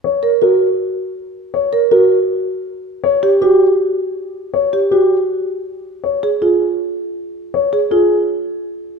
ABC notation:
X:1
M:4/4
L:1/8
Q:1/4=160
K:F#
V:1 name="Grand piano"
c z A z4 z | c z A z4 z | c z =G z4 z | c z =G z4 z |
c z G z4 z | c z G z4 z |]
V:2 name="Marimba"
z A F z4 z | z A F z4 z | z =G F z4 z | z =G F z4 z |
z G E z4 z | z G E z4 z |]